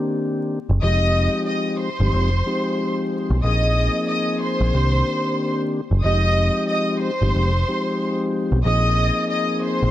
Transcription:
0.00 0.59 D#3 medium
0.00 0.59 A#3 medium
0.00 0.59 C4 medium
0.00 0.59 D4 medium
0.00 0.59 G4 loud
0.69 0.81 F#1 medium
0.82 1.27 F1 loud
0.82 1.89 F3 medium
0.82 1.89 G#3 medium
0.82 1.89 C4 medium
0.82 1.89 D#4 medium
0.82 1.89 G4 loud
0.82 1.44 D#5 loud
0.82 1.44 D#6 medium
1.47 1.76 D#5 medium
1.47 1.77 D#6 medium
1.80 2.93 C5 medium
1.80 2.94 C6 medium
2.00 2.11 G1 medium
2.00 2.30 F3 medium
2.00 2.30 G#3 medium
2.00 2.30 C4 medium
2.00 2.30 D#4 medium
2.00 2.30 G4 loud
2.13 2.41 F1 medium
2.46 3.37 F3 medium
2.46 3.37 G#3 medium
2.46 3.37 C4 medium
2.46 3.37 D#4 medium
2.46 3.38 G4 loud
3.30 3.41 B1 medium
3.43 3.88 A#1 loud
3.43 4.74 F3 medium
3.43 4.74 A#3 medium
3.43 4.74 C4 medium
3.43 4.74 D#4 medium
3.43 4.74 G#4 loud
3.43 4.05 D#5 medium
3.43 4.05 D#6 medium
4.09 4.38 D#5 medium
4.09 4.38 D#6 medium
4.41 5.55 C5 medium
4.41 5.55 C6 medium
4.61 4.72 A#1 medium
4.74 5.02 C2 medium
4.74 5.81 D#3 medium
4.74 5.81 A#3 medium
4.74 5.81 C4 medium
4.74 5.81 D4 medium
4.74 5.81 G4 loud
5.91 6.02 F#1 medium
6.03 6.49 F1 loud
6.03 7.11 F3 medium
6.03 7.11 G#3 medium
6.03 7.11 C4 medium
6.03 7.11 D#4 medium
6.03 7.11 G4 loud
6.03 6.65 D#5 loud
6.03 6.65 D#6 medium
6.69 6.98 D#5 medium
6.69 6.99 D#6 medium
7.01 8.15 C5 medium
7.01 8.15 C6 medium
7.22 7.33 G1 medium
7.22 7.51 F3 medium
7.22 7.52 G#3 medium
7.22 7.52 C4 medium
7.22 7.52 D#4 medium
7.22 7.52 G4 loud
7.35 7.62 F1 medium
7.68 8.59 F3 medium
7.68 8.59 G#3 medium
7.68 8.59 C4 medium
7.68 8.59 D#4 medium
7.68 8.59 G4 loud
8.52 8.63 B1 medium
8.65 9.09 A#1 loud
8.65 9.91 F3 loud
8.65 9.91 A#3 medium
8.65 9.91 C4 medium
8.65 9.91 D#4 medium
8.65 9.91 G#4 loud
8.65 9.26 D#5 loud
8.65 9.27 D#6 medium
9.30 9.59 D#5 medium
9.30 9.60 D#6 medium
9.64 9.91 C5 medium
9.64 9.91 C6 medium
9.83 9.91 A#1 medium

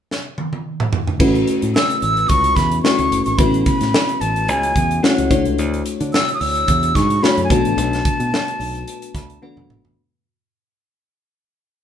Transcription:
0.11 snare medium
0.38 high tom medium
0.53 high tom medium
0.80 mid tom medium
0.93 floor tom medium
1.07 floor tom medium
1.19 1.43 A1 medium
1.19 2.05 A3 medium
1.19 2.05 C#4 medium
1.19 2.05 E4 medium
1.19 2.05 F#4 medium
1.19 2.05 B4 medium
1.19 kick medium
1.19 crash medium
1.35 closed hi-hat soft
1.47 closed hi-hat medium
1.62 1.73 A2 medium
1.62 closed hi-hat medium
1.76 2.01 E6 loud
1.76 snare loud
1.90 closed hi-hat soft
2.02 2.25 A1 medium
2.02 2.30 E6 medium
2.02 closed hi-hat medium
2.17 closed hi-hat soft
2.29 2.52 C#2 medium
2.29 2.57 C#6 loud
2.29 kick medium
2.29 closed hi-hat medium
2.44 closed hi-hat soft
2.56 2.79 E2 medium
2.56 2.82 B5 medium
2.56 kick medium
2.56 snare soft
2.56 closed hi-hat medium
2.71 closed hi-hat soft
2.83 3.28 A3 medium
2.83 3.28 C#4 medium
2.83 3.28 E4 medium
2.83 3.28 F#4 medium
2.83 3.28 B4 medium
2.83 3.23 C#6 medium
2.83 snare medium
2.99 3.10 D2 medium
2.99 closed hi-hat soft
3.11 3.24 F#1 medium
3.11 closed hi-hat medium
3.25 3.37 G#1 medium
3.25 3.40 C#6 medium
3.25 closed hi-hat soft
3.38 3.62 A1 medium
3.38 4.24 A3 medium
3.38 3.46 B3 soft
3.38 4.24 E4 medium
3.38 4.24 F#4 medium
3.38 4.25 B4 medium
3.38 3.65 B5 loud
3.38 kick loud
3.38 closed hi-hat medium
3.46 4.27 C#4 medium
3.54 closed hi-hat soft
3.65 4.22 B5 medium
3.65 kick medium
3.65 closed hi-hat medium
3.81 3.92 A2 medium
3.81 snare soft
3.81 closed hi-hat medium
3.94 snare loud
4.09 closed hi-hat soft
4.21 4.49 A1 medium
4.21 4.50 A5 medium
4.21 closed hi-hat medium
4.36 closed hi-hat soft
4.48 4.72 C#2 medium
4.48 5.05 G#5 medium
4.48 closed hi-hat medium
4.63 closed hi-hat medium
4.76 4.99 E2 medium
4.76 kick medium
4.76 closed hi-hat medium
4.91 closed hi-hat soft
5.03 5.29 A3 medium
5.03 5.31 C#4 medium
5.03 5.29 E4 medium
5.03 5.30 F#4 medium
5.03 5.30 C#5 medium
5.03 5.46 F#5 medium
5.03 snare loud
5.18 5.29 C#2 medium
5.18 closed hi-hat soft
5.30 5.43 D2 medium
5.30 6.19 A3 medium
5.30 6.19 D4 medium
5.30 6.19 E4 medium
5.30 6.19 F#4 medium
5.30 6.19 C#5 medium
5.30 kick medium
5.30 closed hi-hat medium
5.45 5.59 C#2 medium
5.45 closed hi-hat soft
5.58 5.82 D2 medium
5.58 closed hi-hat medium
5.74 closed hi-hat soft
5.86 closed hi-hat medium
6.00 6.11 D3 medium
6.00 closed hi-hat medium
6.14 6.33 E6 loud
6.14 snare loud
6.28 closed hi-hat soft
6.34 6.42 D#6 medium
6.41 6.64 D2 medium
6.41 6.97 E6 loud
6.41 open hi-hat medium
6.55 closed hi-hat soft
6.68 6.91 E2 medium
6.68 kick medium
6.68 closed hi-hat medium
6.83 closed hi-hat medium
6.95 7.18 G#2 medium
6.95 7.25 C#6 medium
6.95 kick medium
6.95 snare soft
6.95 closed hi-hat medium
7.10 closed hi-hat soft
7.22 7.49 A3 medium
7.22 7.50 D4 medium
7.22 7.51 E4 medium
7.22 7.50 F#4 medium
7.22 7.51 C#5 medium
7.22 7.44 B5 medium
7.22 snare loud
7.38 7.48 F#2 medium
7.38 closed hi-hat soft
7.44 7.52 G#5 medium
7.50 7.63 B1 medium
7.50 8.39 A3 medium
7.50 8.39 B3 medium
7.50 8.39 D4 medium
7.50 8.39 F#4 medium
7.50 8.39 B4 medium
7.50 9.43 A5 medium
7.50 kick loud
7.50 closed hi-hat medium
7.65 7.76 A1 medium
7.65 closed hi-hat soft
7.77 8.00 B1 loud
7.77 closed hi-hat medium
7.93 snare soft
7.93 closed hi-hat soft
8.05 kick medium
8.05 closed hi-hat medium
8.20 8.30 B2 medium
8.20 closed hi-hat medium
8.34 snare loud
8.48 closed hi-hat soft
8.60 8.83 B1 medium
8.60 open hi-hat medium
8.75 closed hi-hat soft
8.88 closed hi-hat medium
9.02 closed hi-hat medium
9.14 9.38 D2 medium
9.14 9.41 B5 medium
9.14 kick medium
9.14 snare soft
9.14 closed hi-hat medium
9.30 closed hi-hat soft
9.42 9.86 A3 medium
9.42 9.86 B3 medium
9.42 9.86 D4 medium
9.42 9.86 F#4 medium
9.42 9.86 B4 medium
9.42 9.93 F#5 medium
9.42 high tom soft
9.57 9.67 F#2 medium
9.57 mid tom soft
9.70 mid tom medium
9.84 9.95 A1 medium
9.84 floor tom medium

